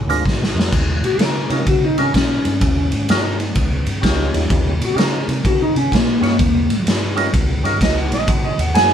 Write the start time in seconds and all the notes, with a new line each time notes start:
0.06 D2 G#3 C4 D4 F4, closed hi-hat
0.10 A#4
0.25 G#1, kick, snare
0.43 snare
0.54 F2
0.59 snare
0.73 D#2, kick, crash
1.01 A#2 F#4, ride
1.18 C#3 A#4, snare, ride
1.50 C3 G3 C#4 D#4 F4 A#4, ride
1.67 C#3 F#4, kick, ride
1.85 D#4
1.98 C3 G3 C#4 D#4 F4 A#4, ride
2.14 A#2 C#4, kick, snare, ride
2.45 G2, ride
2.61 D#2, kick, ride
2.92 G#2, ride
3.09 G2 G3 C#4 D#4 F4 A#4, snare, ride
3.40 ride
3.55 C#2, kick, ride
3.86 G2, ride
4.01 C#2 G3 C#4 D#4 F4 G4, kick, snare, ride
4.34 D#2, snare, ride
4.50 D#2, kick, ride
4.80 A#2, ride
4.85 F#4
4.95 C#3 G3 C#4 D#4 F4 A#4, ride
4.99 A#4, snare
5.28 C3, ride
5.45 C#3 F#4, kick, ride
5.62 D#4
5.75 C3 C#4, ride
5.92 A#2 A#3, kick, snare, ride
6.21 G2 G3 C#4 D#4 F4 C#5, snare, ride
6.39 D#2, kick, ride
6.69 G#2, ride
6.86 G2, snare, ride
7.16 G3 C#4 D#4 F4 A#4, ride
7.33 C#2, kick, ride
7.64 G2 G3 C#4 D#4 F4 A#4, ride
7.81 C#2 D#5, kick, snare, ride
7.98 F#5
8.11 A#1 D#5, snare, ride
8.28 G#1 F#5, kick, ride
8.44 D#5
8.58 D#2 F#5, ride
8.74 F#2 F#3 A#3 C4 D#4 G#4 G#5, snare, ride